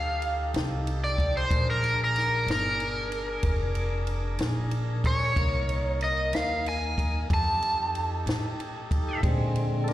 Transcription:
0.00 0.51 D2 medium
0.00 1.46 D#4 medium
0.00 1.45 G4 medium
0.00 1.46 A4 medium
0.00 0.99 F5 medium
0.22 ride medium
0.54 1.47 C2 medium
0.54 snare loud
0.54 ride medium
0.87 ride medium
1.04 1.34 D5 medium
1.18 kick medium
1.18 ride medium
1.37 1.67 C5 medium
1.51 2.44 A#1 medium
1.51 5.33 D4 medium
1.51 5.33 G#4 medium
1.51 5.33 A#4 medium
1.51 kick loud
1.51 ride medium
1.70 1.99 A#4 loud
1.84 ride medium
2.04 2.48 A#4 loud
2.16 snare soft
2.16 ride medium
2.46 3.40 G1 medium
2.46 snare loud
2.46 ride medium
2.51 4.38 A#4 loud
2.80 ride medium
3.12 ride medium
3.43 4.37 F1 medium
3.43 kick loud
3.43 ride medium
3.75 ride medium
4.07 ride medium
4.39 5.33 A#1 medium
4.39 snare loud
4.39 ride medium
4.71 ride medium
5.04 5.99 C#5 loud
5.04 kick medium
5.04 ride medium
5.36 6.30 C2 medium
5.36 7.28 A#3 medium
5.36 7.29 D#4 medium
5.36 7.28 A#4 medium
5.36 kick loud
5.36 ride medium
5.69 ride medium
6.01 6.36 D#5 medium
6.01 ride medium
6.33 7.27 D#2 medium
6.33 6.66 F5 medium
6.33 snare loud
6.33 ride medium
6.66 7.29 G#5 medium
6.66 ride medium
6.98 kick medium
6.98 ride medium
7.30 8.24 F2 medium
7.30 9.21 D#4 medium
7.30 9.21 G4 medium
7.30 9.21 A4 medium
7.30 kick loud
7.30 ride medium
7.34 9.21 A5 loud
7.62 ride medium
7.95 ride medium
8.26 9.20 A2 loud
8.26 snare loud
8.26 ride medium
8.60 ride medium
8.91 kick medium
8.91 ride medium
9.23 9.93 A#2 medium
9.23 9.93 D3 medium
9.23 9.93 G#3 soft
9.23 9.93 C4 medium
9.23 kick loud
9.23 ride medium
9.56 ride medium
9.84 9.88 A4 medium
9.84 ride medium
9.88 9.93 D4 medium
9.88 9.93 A#4 medium
9.88 snare soft

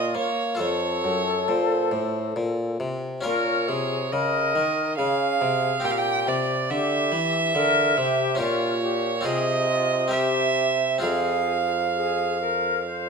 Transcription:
0.00 0.11 A#2 soft
0.00 0.15 A#2 medium
0.00 0.55 C#4 soft
0.00 0.28 F4 medium
0.00 0.54 F4 soft
0.00 0.56 A#4 soft
0.00 0.15 D#5 medium
0.15 0.55 A#3 soft
0.15 0.62 A#3 medium
0.15 0.60 C#5 medium
0.55 3.17 F4 soft
0.55 3.18 A4 soft
0.60 1.00 F2 soft
0.60 1.04 F2 medium
0.60 2.76 A4 medium
0.60 1.50 C#5 medium
1.04 1.44 F#2 soft
1.04 1.48 F#2 soft
1.48 1.88 A#2 soft
1.48 1.94 A#2 soft
1.48 2.36 C5 medium
1.92 2.31 A2 soft
1.92 2.35 A2 soft
2.36 2.79 A#2 soft
2.36 2.76 A#2 soft
2.80 3.23 C3 soft
2.80 3.20 C3 soft
3.21 3.70 A#2 medium
3.21 5.79 C#4 soft
3.21 5.79 F4 soft
3.21 5.80 A#4 soft
3.21 3.70 A#4 medium
3.21 4.14 C#5 medium
3.25 3.65 A#2 soft
3.68 4.12 C3 soft
3.68 4.08 C3 soft
3.68 4.14 G#4 soft
4.12 4.57 C#3 soft
4.12 4.52 C#3 soft
4.12 4.97 A#4 medium
4.12 4.98 D#5 medium
4.56 4.94 D#3 soft
4.56 5.00 D#3 medium
4.97 5.42 C#3 medium
4.97 5.37 C#3 soft
4.97 5.85 G#4 medium
4.97 5.86 F5 medium
5.41 5.71 C3 medium
5.41 5.80 C3 soft
5.80 8.34 C4 soft
5.80 8.35 G4 soft
5.80 6.70 G4 medium
5.84 6.29 A#2 medium
5.84 6.23 A#2 soft
5.84 5.92 G5 medium
5.91 5.99 F5 medium
5.98 6.30 G5 medium
6.27 6.66 C3 soft
6.27 6.71 C3 medium
6.27 6.72 D5 medium
6.70 7.09 D3 soft
6.70 7.15 D3 medium
6.70 7.54 G4 medium
6.70 8.39 E5 medium
7.12 7.51 E3 soft
7.12 7.55 E3 medium
7.55 7.94 D3 medium
7.55 7.97 D3 medium
7.55 7.99 A#4 medium
7.97 8.36 C3 soft
7.97 8.40 C3 medium
7.97 8.40 G4 medium
8.35 9.20 C#4 soft
8.35 9.21 F4 soft
8.35 9.22 G4 soft
8.39 9.21 A#2 soft
8.39 9.27 A#2 medium
8.39 8.82 F4 medium
8.39 9.26 C#5 medium
8.83 9.25 G4 medium
9.21 10.07 C4 soft
9.21 10.09 F4 soft
9.21 10.10 G#4 soft
9.25 10.99 C3 soft
9.25 11.03 C3 medium
9.25 9.70 G#4 medium
9.25 10.14 D#5 medium
9.69 10.13 F4 medium
10.08 10.97 C4 soft
10.08 10.99 G4 soft
10.08 11.00 A#4 soft
10.13 10.74 G4 medium
10.13 11.03 E5 medium
10.98 13.09 C4 soft
10.98 13.09 F4 soft
10.98 13.09 G#4 soft
11.03 13.09 F2 soft
11.03 13.09 F2 medium
11.03 11.82 G#4 soft
11.03 13.09 F5 medium
11.95 12.37 G#4 soft
12.40 12.84 A#4 medium
12.85 13.09 C5 soft

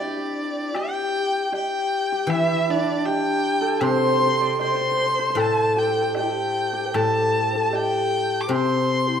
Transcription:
0.00 2.42 C4 medium
0.00 0.75 D4 medium
0.00 2.29 E4 medium
0.00 0.78 D5 medium
0.07 0.16 G4 medium
0.17 0.74 G4 medium
0.74 1.52 G4 medium
0.74 1.53 G5 loud
0.74 high woodblock medium
1.52 2.12 G4 medium
1.52 2.31 G4 medium
1.52 2.32 G5 medium
1.52 low woodblock soft
2.12 3.07 G4 medium
2.27 4.59 E3 medium
2.27 2.70 E4 medium
2.27 5.77 E4 medium
2.27 2.72 E5 loud
2.27 high woodblock medium
2.68 3.07 D4 medium
2.68 6.43 D4 medium
2.68 3.07 D5 medium
3.06 3.83 G4 medium
3.06 5.76 G4 medium
3.06 3.84 G5 loud
3.06 low woodblock soft
3.61 5.36 A4 medium
3.81 5.37 C3 medium
3.81 3.90 C5 medium
3.81 4.30 C5 medium
3.81 4.60 C6 loud
3.81 high woodblock medium
3.90 3.97 C5 medium
3.98 4.05 C5 medium
4.05 4.11 C5 medium
4.12 4.19 C5 medium
4.20 4.27 C5 medium
4.27 4.60 C5 medium
4.41 6.87 D5 medium
4.59 5.38 C5 medium
4.59 4.66 C5 medium
4.59 5.42 C6 loud
4.59 low woodblock soft
4.66 4.74 C5 medium
4.75 4.81 C5 medium
4.81 4.91 C5 medium
4.91 4.97 C5 medium
4.97 5.06 C5 medium
5.06 5.19 C5 medium
5.19 5.30 C5 medium
5.30 7.94 C5 medium
5.35 6.93 A2 medium
5.35 6.17 A4 medium
5.35 6.95 A4 medium
5.35 high woodblock medium
5.41 5.80 A5 loud
5.76 6.16 G4 medium
5.76 6.15 G5 medium
6.15 6.25 G4 medium
6.15 6.73 G4 medium
6.15 6.96 G5 medium
6.15 high woodblock soft
6.15 low woodblock soft
6.23 6.32 E4 medium
6.30 6.74 G4 medium
6.73 7.73 G4 medium
6.73 6.87 G4 medium
6.86 6.94 C5 medium
6.92 8.51 A2 medium
6.92 7.51 A4 medium
6.92 7.55 A4 medium
6.92 7.63 A5 loud
6.92 high woodblock medium
7.52 9.20 A4 medium
7.52 7.58 C5 medium
7.57 7.72 A4 medium
7.63 7.77 A5 medium
7.70 8.49 G4 medium
7.70 9.20 G4 medium
7.70 low woodblock soft
7.75 8.42 G5 medium
8.41 8.53 D6 medium
8.47 9.20 C3 medium
8.47 9.09 C5 medium
8.47 9.20 C5 medium
8.47 high woodblock medium
8.51 9.20 C6 loud
9.08 9.20 E4 medium

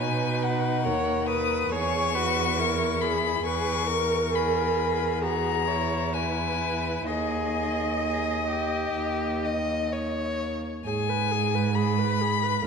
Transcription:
0.00 0.87 B2 medium
0.00 0.86 D#4 medium
0.00 0.86 B4 medium
0.00 0.45 G#5 medium
0.43 1.27 F#5 medium
0.85 1.70 D#2 medium
0.85 1.73 A#4 medium
0.85 1.28 C#5 medium
1.26 1.73 B4 medium
1.26 1.71 D#6 loud
1.69 3.42 E2 medium
1.69 2.16 G#4 medium
1.69 2.16 C#5 medium
1.69 3.03 C#6 loud
2.15 2.60 F#4 medium
2.15 2.61 B4 medium
2.59 3.43 E4 medium
2.59 3.04 A#4 medium
3.01 3.47 G#4 medium
3.01 3.45 B5 medium
3.44 7.02 E2 medium
3.44 3.88 G#4 medium
3.44 3.90 B4 medium
3.44 4.37 C#6 loud
3.87 4.32 A#4 medium
3.87 5.23 A#4 medium
4.34 5.24 G#4 medium
4.34 5.22 B5 medium
5.22 5.68 F#4 medium
5.22 5.69 G#4 medium
5.22 6.15 A#5 loud
5.68 7.10 E4 medium
5.68 6.15 C#5 medium
6.13 7.08 B4 medium
6.13 7.07 G#5 medium
7.06 8.91 D#2 medium
7.06 7.93 G#4 medium
7.06 10.38 D#5 medium
7.06 9.87 D#5 medium
8.03 8.46 G#4 medium
8.49 9.46 G4 medium
8.95 10.61 D#2 medium
9.45 9.93 D#5 medium
9.92 10.86 C#5 medium
10.84 12.60 G#2 medium
10.84 11.11 G#4 medium
10.84 11.76 G#5 loud
11.09 11.33 B4 medium
11.31 11.57 G#4 medium
11.55 11.75 B4 medium
11.74 12.01 G#4 medium
11.74 12.67 B5 loud
11.99 12.23 B4 medium
12.21 12.45 G#4 medium
12.43 12.64 B4 medium
12.64 12.67 D#2 medium

